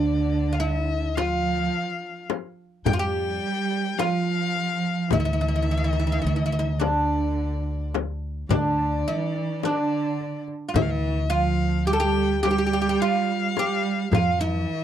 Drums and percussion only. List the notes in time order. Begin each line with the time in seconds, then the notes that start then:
1.17 darbuka tek, frame drum
2.30 darbuka tek, frame drum
2.86 frame drum, darbuka dum
3.43 darbuka ka
3.72 darbuka ka
3.99 darbuka tek, frame drum
4.56 darbuka ka
4.84 darbuka ka
5.11 frame drum, darbuka dum
6.81 darbuka tek, frame drum
7.94 darbuka tek, frame drum
8.51 frame drum, darbuka dum
9.07 darbuka ka
9.35 darbuka ka
9.63 darbuka tek, frame drum
10.20 darbuka ka
10.48 darbuka ka
10.76 frame drum, darbuka dum
12.44 darbuka tek, frame drum
13.57 darbuka tek, frame drum
14.13 frame drum, darbuka dum
14.70 darbuka ka